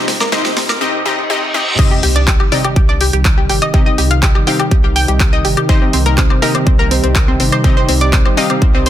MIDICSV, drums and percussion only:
0, 0, Header, 1, 2, 480
1, 0, Start_track
1, 0, Key_signature, -3, "minor"
1, 0, Tempo, 487805
1, 1759, Time_signature, 4, 2, 24, 8
1, 8752, End_track
2, 0, Start_track
2, 0, Title_t, "Drums"
2, 78, Note_on_c, 9, 38, 97
2, 78, Note_on_c, 9, 46, 112
2, 177, Note_off_c, 9, 38, 0
2, 177, Note_off_c, 9, 46, 0
2, 202, Note_on_c, 9, 38, 79
2, 202, Note_on_c, 9, 42, 37
2, 202, Note_on_c, 9, 76, 78
2, 205, Note_on_c, 9, 70, 85
2, 300, Note_off_c, 9, 38, 0
2, 300, Note_off_c, 9, 42, 0
2, 300, Note_off_c, 9, 76, 0
2, 304, Note_off_c, 9, 70, 0
2, 318, Note_on_c, 9, 38, 97
2, 318, Note_on_c, 9, 42, 90
2, 319, Note_on_c, 9, 70, 64
2, 416, Note_off_c, 9, 38, 0
2, 416, Note_off_c, 9, 42, 0
2, 417, Note_off_c, 9, 70, 0
2, 439, Note_on_c, 9, 70, 40
2, 442, Note_on_c, 9, 38, 85
2, 442, Note_on_c, 9, 42, 38
2, 442, Note_on_c, 9, 64, 87
2, 537, Note_off_c, 9, 70, 0
2, 540, Note_off_c, 9, 38, 0
2, 540, Note_off_c, 9, 42, 0
2, 540, Note_off_c, 9, 64, 0
2, 558, Note_on_c, 9, 38, 95
2, 558, Note_on_c, 9, 46, 108
2, 657, Note_off_c, 9, 38, 0
2, 657, Note_off_c, 9, 46, 0
2, 680, Note_on_c, 9, 70, 77
2, 682, Note_on_c, 9, 38, 85
2, 682, Note_on_c, 9, 63, 71
2, 682, Note_on_c, 9, 76, 80
2, 779, Note_off_c, 9, 70, 0
2, 780, Note_off_c, 9, 38, 0
2, 780, Note_off_c, 9, 63, 0
2, 780, Note_off_c, 9, 76, 0
2, 1758, Note_on_c, 9, 36, 122
2, 1759, Note_on_c, 9, 42, 56
2, 1759, Note_on_c, 9, 49, 105
2, 1857, Note_off_c, 9, 36, 0
2, 1858, Note_off_c, 9, 42, 0
2, 1858, Note_off_c, 9, 49, 0
2, 1999, Note_on_c, 9, 46, 104
2, 2097, Note_off_c, 9, 46, 0
2, 2123, Note_on_c, 9, 42, 67
2, 2222, Note_off_c, 9, 42, 0
2, 2238, Note_on_c, 9, 36, 120
2, 2239, Note_on_c, 9, 39, 125
2, 2240, Note_on_c, 9, 42, 54
2, 2337, Note_off_c, 9, 36, 0
2, 2337, Note_off_c, 9, 39, 0
2, 2338, Note_off_c, 9, 42, 0
2, 2362, Note_on_c, 9, 76, 63
2, 2460, Note_off_c, 9, 76, 0
2, 2479, Note_on_c, 9, 46, 93
2, 2578, Note_off_c, 9, 46, 0
2, 2603, Note_on_c, 9, 42, 70
2, 2603, Note_on_c, 9, 76, 58
2, 2701, Note_off_c, 9, 42, 0
2, 2701, Note_off_c, 9, 76, 0
2, 2718, Note_on_c, 9, 36, 127
2, 2719, Note_on_c, 9, 42, 55
2, 2817, Note_off_c, 9, 36, 0
2, 2818, Note_off_c, 9, 42, 0
2, 2958, Note_on_c, 9, 46, 104
2, 3057, Note_off_c, 9, 46, 0
2, 3082, Note_on_c, 9, 42, 68
2, 3181, Note_off_c, 9, 42, 0
2, 3198, Note_on_c, 9, 36, 123
2, 3199, Note_on_c, 9, 39, 127
2, 3200, Note_on_c, 9, 42, 57
2, 3296, Note_off_c, 9, 36, 0
2, 3297, Note_off_c, 9, 39, 0
2, 3298, Note_off_c, 9, 42, 0
2, 3439, Note_on_c, 9, 46, 95
2, 3537, Note_off_c, 9, 46, 0
2, 3561, Note_on_c, 9, 42, 68
2, 3561, Note_on_c, 9, 76, 58
2, 3660, Note_off_c, 9, 42, 0
2, 3660, Note_off_c, 9, 76, 0
2, 3678, Note_on_c, 9, 36, 127
2, 3679, Note_on_c, 9, 42, 55
2, 3777, Note_off_c, 9, 36, 0
2, 3778, Note_off_c, 9, 42, 0
2, 3919, Note_on_c, 9, 46, 112
2, 4017, Note_off_c, 9, 46, 0
2, 4041, Note_on_c, 9, 42, 65
2, 4140, Note_off_c, 9, 42, 0
2, 4158, Note_on_c, 9, 36, 125
2, 4159, Note_on_c, 9, 39, 126
2, 4160, Note_on_c, 9, 42, 57
2, 4257, Note_off_c, 9, 36, 0
2, 4257, Note_off_c, 9, 39, 0
2, 4258, Note_off_c, 9, 42, 0
2, 4283, Note_on_c, 9, 76, 63
2, 4381, Note_off_c, 9, 76, 0
2, 4399, Note_on_c, 9, 46, 100
2, 4498, Note_off_c, 9, 46, 0
2, 4522, Note_on_c, 9, 42, 66
2, 4522, Note_on_c, 9, 76, 56
2, 4620, Note_off_c, 9, 42, 0
2, 4620, Note_off_c, 9, 76, 0
2, 4639, Note_on_c, 9, 36, 127
2, 4639, Note_on_c, 9, 42, 55
2, 4737, Note_off_c, 9, 36, 0
2, 4738, Note_off_c, 9, 42, 0
2, 4880, Note_on_c, 9, 46, 102
2, 4978, Note_off_c, 9, 46, 0
2, 5002, Note_on_c, 9, 42, 68
2, 5101, Note_off_c, 9, 42, 0
2, 5119, Note_on_c, 9, 36, 127
2, 5119, Note_on_c, 9, 39, 127
2, 5120, Note_on_c, 9, 42, 54
2, 5217, Note_off_c, 9, 36, 0
2, 5217, Note_off_c, 9, 39, 0
2, 5218, Note_off_c, 9, 42, 0
2, 5360, Note_on_c, 9, 46, 99
2, 5459, Note_off_c, 9, 46, 0
2, 5482, Note_on_c, 9, 42, 66
2, 5482, Note_on_c, 9, 76, 58
2, 5581, Note_off_c, 9, 42, 0
2, 5581, Note_off_c, 9, 76, 0
2, 5599, Note_on_c, 9, 36, 127
2, 5600, Note_on_c, 9, 42, 52
2, 5698, Note_off_c, 9, 36, 0
2, 5698, Note_off_c, 9, 42, 0
2, 5838, Note_on_c, 9, 46, 117
2, 5937, Note_off_c, 9, 46, 0
2, 5962, Note_on_c, 9, 42, 65
2, 6060, Note_off_c, 9, 42, 0
2, 6078, Note_on_c, 9, 39, 127
2, 6079, Note_on_c, 9, 42, 54
2, 6080, Note_on_c, 9, 36, 122
2, 6176, Note_off_c, 9, 39, 0
2, 6177, Note_off_c, 9, 42, 0
2, 6178, Note_off_c, 9, 36, 0
2, 6202, Note_on_c, 9, 76, 64
2, 6301, Note_off_c, 9, 76, 0
2, 6320, Note_on_c, 9, 46, 99
2, 6418, Note_off_c, 9, 46, 0
2, 6443, Note_on_c, 9, 42, 62
2, 6443, Note_on_c, 9, 76, 59
2, 6541, Note_off_c, 9, 42, 0
2, 6541, Note_off_c, 9, 76, 0
2, 6560, Note_on_c, 9, 36, 127
2, 6560, Note_on_c, 9, 42, 53
2, 6658, Note_off_c, 9, 36, 0
2, 6658, Note_off_c, 9, 42, 0
2, 6801, Note_on_c, 9, 46, 108
2, 6899, Note_off_c, 9, 46, 0
2, 6924, Note_on_c, 9, 42, 65
2, 7022, Note_off_c, 9, 42, 0
2, 7040, Note_on_c, 9, 36, 127
2, 7040, Note_on_c, 9, 39, 122
2, 7041, Note_on_c, 9, 42, 53
2, 7138, Note_off_c, 9, 36, 0
2, 7139, Note_off_c, 9, 39, 0
2, 7140, Note_off_c, 9, 42, 0
2, 7280, Note_on_c, 9, 46, 100
2, 7378, Note_off_c, 9, 46, 0
2, 7404, Note_on_c, 9, 42, 63
2, 7404, Note_on_c, 9, 76, 62
2, 7502, Note_off_c, 9, 42, 0
2, 7502, Note_off_c, 9, 76, 0
2, 7520, Note_on_c, 9, 36, 123
2, 7521, Note_on_c, 9, 42, 50
2, 7618, Note_off_c, 9, 36, 0
2, 7619, Note_off_c, 9, 42, 0
2, 7760, Note_on_c, 9, 46, 113
2, 7858, Note_off_c, 9, 46, 0
2, 7883, Note_on_c, 9, 42, 63
2, 7982, Note_off_c, 9, 42, 0
2, 7999, Note_on_c, 9, 39, 126
2, 8000, Note_on_c, 9, 36, 126
2, 8000, Note_on_c, 9, 42, 55
2, 8098, Note_off_c, 9, 36, 0
2, 8098, Note_off_c, 9, 39, 0
2, 8099, Note_off_c, 9, 42, 0
2, 8123, Note_on_c, 9, 76, 69
2, 8221, Note_off_c, 9, 76, 0
2, 8241, Note_on_c, 9, 46, 102
2, 8339, Note_off_c, 9, 46, 0
2, 8363, Note_on_c, 9, 42, 63
2, 8363, Note_on_c, 9, 76, 61
2, 8462, Note_off_c, 9, 42, 0
2, 8462, Note_off_c, 9, 76, 0
2, 8480, Note_on_c, 9, 36, 127
2, 8480, Note_on_c, 9, 42, 51
2, 8578, Note_off_c, 9, 36, 0
2, 8578, Note_off_c, 9, 42, 0
2, 8719, Note_on_c, 9, 46, 111
2, 8752, Note_off_c, 9, 46, 0
2, 8752, End_track
0, 0, End_of_file